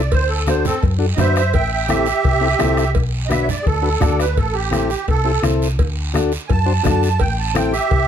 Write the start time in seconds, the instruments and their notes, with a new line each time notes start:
Already playing: fingered electric bass C2, accordion D5
0.11 fingered electric bass D2, accordion C5, bombo low, cowbell, high conga, long guiro
0.28 accordion A4
0.47 transistor combo organ D4 F#4 A4, accordion C5, bombo rim, cowbell, high conga, short guiro
0.65 accordion C4 A4, low conga, short guiro
0.83 fingered electric bass F#2, bombo low, cowbell, high conga, long guiro
0.99 transistor combo organ D4 F#4 A4
1.15 transistor combo organ D4 F#4 B4, accordion C5 D#5, cowbell, high conga, low conga, short guiro
1.19 fingered electric bass F#2, accordion E5, bombo rim
1.36 accordion C5 E5, bombo rim, short guiro
1.53 fingered electric bass A1, accordion E5 G5, bombo low, cowbell, long guiro
1.71 accordion E5 G5
1.87 transistor combo organ C4 E4 A4, accordion G4 E5, bombo rim, cowbell, high conga, short guiro
2.06 short guiro
2.24 fingered electric bass C2, bombo low, cowbell, high conga, long guiro
2.41 transistor combo organ C4 E4 A4
2.59 fingered electric bass C2, transistor combo organ C4 E4 A4, bombo rim, cowbell, high conga, low timbale, short guiro
2.77 bombo rim, short guiro
2.95 fingered electric bass B1, bombo low, cowbell, high conga, long guiro
3.26 transistor combo organ D4 F#4 B4, accordion D#5
3.30 accordion E5, bombo rim, cowbell, high conga, short guiro
3.43 accordion C#5
3.48 accordion D5, low conga, short guiro
3.63 fingered electric bass D2, accordion G#4, bombo low, high conga
3.67 accordion A4, cowbell, long guiro
3.82 transistor combo organ D4 F#4 B4
4.00 fingered electric bass D2, transistor combo organ D4 F#4 D5, bombo low, bombo rim, cowbell, high conga, low conga, short guiro
4.19 accordion B4, bombo rim, short guiro
4.37 fingered electric bass A1, accordion A4, bombo low, cowbell, high conga, long guiro
4.54 accordion G4
4.71 transistor combo organ C4 E4 A4, bombo rim, cowbell, high conga, short guiro
4.90 short guiro
5.08 fingered electric bass C2, accordion A4, bombo low, cowbell, high conga, long guiro
5.24 transistor combo organ C4 E4 G4
5.43 fingered electric bass C2, transistor combo organ C4 E4 A4, bombo rim, cowbell, high conga, short guiro
5.62 short guiro
5.79 fingered electric bass D2, bombo low, cowbell, high conga, long guiro
6.14 transistor combo organ D4 F#4 A4, bombo rim, cowbell, high conga, short guiro
6.32 short guiro
6.47 fingered electric bass F#2, accordion G#5, bombo low, cowbell, high conga, long guiro
6.51 accordion A5
6.66 transistor combo organ D4 F#4 C5
6.83 fingered electric bass F#2, transistor combo organ D4 F#4 A4, bombo low, bombo rim, cowbell, high conga, low conga, short guiro
7.03 short guiro
7.20 fingered electric bass A1, accordion G5, bombo low, cowbell, high conga, long guiro
7.39 accordion A5
7.54 transistor combo organ C4 E4 A4, accordion G5, bombo rim, cowbell, high conga, short guiro
7.72 accordion G4 E5, short guiro
7.91 fingered electric bass C2, bombo low, cowbell, high conga, long guiro